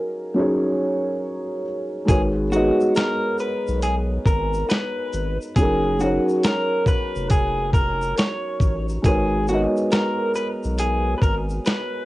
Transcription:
0.00 0.34 F#3 medium
0.00 0.35 C#4 medium
0.00 0.37 D#4 medium
0.00 0.38 G#4 medium
0.00 2.08 A#4 medium
0.00 2.10 F5 medium
0.00 2.11 G#5 medium
0.34 1.62 F#3 medium
0.34 1.63 C#4 medium
0.34 1.64 D#4 medium
0.34 1.64 G#4 medium
0.39 1.65 C#5 medium
2.05 2.71 G#1 loud
2.05 2.42 G#3 medium
2.05 2.43 D#4 medium
2.05 2.43 F#4 medium
2.05 2.21 G#4 loud
2.05 2.44 A#4 medium
2.05 kick loud
2.05 closed hi-hat medium
2.05 shaker medium
2.09 2.44 B4 medium
2.09 2.45 C#5 medium
2.51 3.79 G#3 medium
2.51 3.80 D#4 medium
2.51 2.92 F#4 medium
2.51 3.80 F#4 medium
2.51 3.81 G#4 medium
2.51 shaker soft
2.55 3.81 B3 medium
2.55 3.82 D#5 medium
2.80 shaker soft
2.96 3.36 A#4 loud
2.96 snare loud
2.96 closed hi-hat medium
2.96 shaker medium
3.38 3.83 B4 medium
3.38 shaker medium
3.68 4.19 B1 medium
3.68 shaker medium
3.82 3.95 G#4 medium
3.82 closed hi-hat medium
3.82 shaker medium
4.26 4.64 G#1 loud
4.26 4.69 A#4 medium
4.26 kick medium
4.26 shaker soft
4.26 shaker medium
4.54 shaker soft
4.70 5.37 B4 loud
4.70 snare loud
4.70 closed hi-hat medium
4.70 shaker medium
5.13 5.38 G#1 medium
5.13 shaker soft
5.41 shaker soft
5.56 6.19 F#1 loud
5.56 5.92 F#3 medium
5.56 5.92 C#4 medium
5.56 5.93 D#4 medium
5.56 6.01 G#4 loud
5.56 kick loud
5.56 closed hi-hat medium
5.56 shaker medium
5.60 5.94 G#4 medium
5.60 5.94 A#4 medium
5.98 7.27 F#3 medium
5.98 7.28 C#4 medium
5.98 7.28 D#4 medium
5.98 6.45 F#4 medium
5.98 7.29 G#4 medium
5.98 shaker medium
5.98 shaker soft
6.03 7.30 C#5 medium
6.29 shaker soft
6.43 6.88 A#4 loud
6.43 snare loud
6.43 closed hi-hat medium
6.43 shaker medium
6.86 7.28 B4 loud
6.86 kick medium
6.86 shaker medium
7.16 8.14 F1 medium
7.16 shaker soft
7.30 7.73 G#4 loud
7.30 kick medium
7.30 closed hi-hat medium
7.30 shaker medium
7.73 8.18 A#4 loud
7.73 kick medium
7.73 shaker medium
7.73 shaker soft
8.02 shaker medium
8.18 8.86 C#5 loud
8.18 snare loud
8.18 closed hi-hat medium
8.18 shaker medium
8.60 8.98 A1 medium
8.60 kick medium
8.60 shaker soft
8.89 shaker soft
9.02 9.67 G#1 loud
9.02 9.39 G#3 medium
9.02 9.39 D#4 medium
9.02 9.40 F#4 medium
9.02 9.45 G#4 loud
9.02 9.40 A#4 medium
9.02 kick loud
9.02 closed hi-hat medium
9.02 shaker medium
9.07 9.41 B4 medium
9.07 9.41 C#5 medium
9.48 10.76 G#3 medium
9.48 10.77 D#4 medium
9.48 9.61 F#4 medium
9.48 10.77 F#4 medium
9.48 10.78 G#4 medium
9.48 shaker soft
9.53 10.78 B3 medium
9.53 10.79 D#5 medium
9.77 shaker soft
9.92 10.32 A#4 loud
9.92 snare loud
9.92 closed hi-hat medium
9.92 shaker medium
10.35 10.47 B4 loud
10.35 shaker medium
10.63 11.15 B1 medium
10.63 shaker soft
10.78 11.17 G#4 medium
10.78 closed hi-hat medium
10.78 shaker medium
11.18 11.22 B4 medium
11.18 kick medium
11.22 11.59 G#1 medium
11.22 11.34 A#4 medium
11.22 shaker soft
11.22 shaker medium
11.50 shaker medium
11.66 12.05 B4 loud
11.66 snare loud
11.66 closed hi-hat medium
11.66 shaker medium

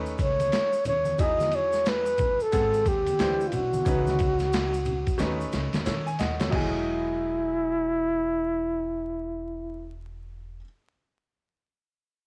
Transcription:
0.00 0.14 D#2 loud
0.00 1.15 A3 medium
0.00 1.16 C#4 medium
0.00 1.17 D#4 medium
0.00 1.17 B4 medium
0.06 shaker soft
0.18 0.47 C#2 medium
0.18 0.83 C#5 medium
0.18 kick medium
0.18 ride medium
0.18 shaker soft
0.40 ride soft
0.40 high conga medium
0.40 shaker soft
0.52 snare loud
0.52 hi-hat pedal soft
0.52 ride medium
0.52 shaker medium
0.73 shaker soft
0.85 1.14 D#2 medium
0.85 1.22 C#5 loud
0.85 ride medium
0.85 low conga medium
0.85 shaker soft
1.05 high conga medium
1.05 shaker medium
1.18 2.36 E2 medium
1.18 2.49 F#3 medium
1.18 2.50 D#4 medium
1.18 2.50 E4 medium
1.18 2.51 G#4 medium
1.18 1.57 D#5 loud
1.18 kick loud
1.18 ride medium
1.18 shaker medium
1.40 snare soft
1.40 high conga medium
1.40 shaker soft
1.52 1.90 C#5 loud
1.52 ride medium
1.52 shaker soft
1.73 snare soft
1.73 shaker soft
1.86 2.44 B4 loud
1.86 snare loud
1.86 hi-hat pedal medium
1.86 ride medium
1.86 shaker medium
2.06 shaker medium
2.18 kick loud
2.18 ride medium
2.18 low conga medium
2.18 shaker soft
2.40 2.89 A4 medium
2.40 shaker soft
2.52 2.81 G#1 loud
2.52 3.19 G#3 medium
2.52 2.60 B3 soft
2.52 3.20 A4 medium
2.52 3.19 F#5 medium
2.52 kick medium
2.52 ride medium
2.52 shaker medium
2.58 3.22 C4 medium
2.74 shaker soft
2.86 3.14 D#2 loud
2.86 3.49 G4 medium
2.86 kick medium
2.86 ride medium
2.86 shaker soft
3.06 ride soft
3.06 high conga medium
3.06 shaker soft
3.19 3.47 D2 medium
3.19 3.83 E3 medium
3.19 3.86 D4 medium
3.19 3.86 E4 medium
3.19 3.87 C5 medium
3.19 snare loud
3.19 hi-hat pedal soft
3.19 ride medium
3.19 shaker soft
3.41 shaker soft
3.48 3.55 F4 medium
3.48 ride medium
3.52 3.81 B1 medium
3.52 5.53 F#4 medium
3.52 low conga medium
3.52 shaker soft
3.73 high conga medium
3.73 shaker medium
3.85 5.03 C#2 loud
3.85 5.16 E3 medium
3.85 5.17 C#4 medium
3.85 5.17 D#4 medium
3.85 5.18 B4 medium
3.85 kick loud
3.85 ride medium
3.85 shaker medium
4.07 snare soft
4.07 high conga medium
4.07 shaker soft
4.19 kick medium
4.19 ride medium
4.19 shaker soft
4.39 snare soft
4.39 ride soft
4.39 shaker soft
4.53 snare loud
4.53 hi-hat pedal medium
4.53 ride medium
4.53 shaker medium
4.74 shaker medium
4.85 ride medium
4.85 low conga medium
4.85 shaker soft
5.07 kick medium
5.07 ride soft
5.07 shaker soft
5.18 5.48 D#2 loud
5.18 6.49 A3 medium
5.18 6.50 C#4 medium
5.18 6.50 D#4 medium
5.18 5.85 B4 medium
5.18 snare medium
5.18 ride medium
5.18 high conga soft
5.18 shaker medium
5.41 shaker soft
5.52 5.70 C#2 medium
5.52 snare medium
5.52 ride medium
5.52 shaker soft
5.73 5.84 D#2 medium
5.73 snare medium
5.73 ride soft
5.73 high conga medium
5.73 shaker soft
5.85 6.14 D#3 loud
5.85 6.05 A4 soft
5.85 6.05 C#5 medium
5.85 snare medium
5.85 hi-hat pedal soft
5.85 ride medium
5.85 low conga medium
5.85 shaker medium
6.06 6.18 G#5 medium
6.06 shaker soft
6.19 6.47 D#2 medium
6.19 6.39 D#5 medium
6.19 6.39 F#5 medium
6.19 snare medium
6.19 ride medium
6.19 low conga medium
6.19 shaker soft
6.39 6.72 A4 soft
6.39 6.71 C#5 medium
6.39 snare medium
6.39 ride soft
6.39 high conga medium
6.39 shaker soft
6.49 10.60 E1 medium
6.49 10.56 F#3 medium
6.49 10.58 D#5 medium
6.49 kick loud
6.49 crash medium
6.49 high conga medium
6.53 10.60 E4 medium
6.53 9.96 E4 medium
6.53 10.62 G#4 loud

